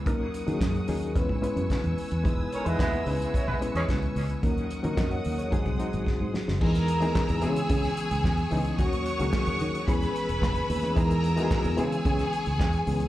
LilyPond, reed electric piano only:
\new Staff \with { instrumentName = "Reed electric piano" } { \time 4/4 \key cis \dorian \tempo 4 = 110 << { r1 | r1 | r4 <ais' dis''>16 <cis'' fis''>8 <gis' cis''>8 r4. r16 | r1 |
r1 | r1 | } \\ { <fis ais cis' dis' ais'>8. <fis ais cis' dis' gis'>8. <fis ais cis' dis' gis'>8 <gis b cis' e' b'>8 <gis b cis' e' b'>4~ <gis b cis' e' b'>16 r16 | <gis b dis' e' b'>8. <gis b dis' e' b'>8. <gis b cis' dis' e' b'>8. r16 <gis b cis' e' b'>4~ <gis b cis' e' b'>16 r16 | <fis ais cis' dis' ais'>8. <fis ais cis' dis' ais'>8. r8 <fis gis bis dis' gis'>8 <fis gis bis dis' fis'>4~ <fis gis bis dis' fis'>16 r16 | <e gis b dis' gis'>8. <e gis b dis' gis'>8. <e gis b cis' gis'>4.~ <e gis b cis' gis'>16 r16 <e gis b cis' dis'>8 |
<dis fis ais cis' fis'>8. <dis fis ais cis' gis'>4~ <dis fis ais cis' gis'>16 <e gis b cis' gis'>4. r16 <e gis b cis' gis'>16 | <e gis b dis' gis'>8. <e gis b dis' fis' gis'>8. <e gis b cis' gis'>4.~ <e gis b cis' gis'>16 r16 <e gis b cis' gis'>8 | } >> }